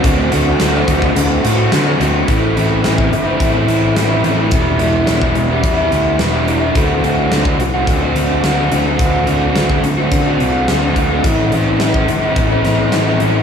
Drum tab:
HH |x-x-x-x-x-x-x-x-|x-x-x-x-x-x-x-x-|x-x-x-x-x-x-x-x-|x-x-x-x-x-x-x-x-|
SD |----o-------o---|----o-------o---|----o-------o---|----o-------o---|
BD |o-----oo--------|o----o--o-------|o----o--o-------|o----o--o-------|

HH |x-x-x-x-x-x-x-x-|x-x-x-x-x-x-x-x-|
SD |----o-------o---|----o-----o-o---|
BD |o----o--o-----o-|o----o--o-------|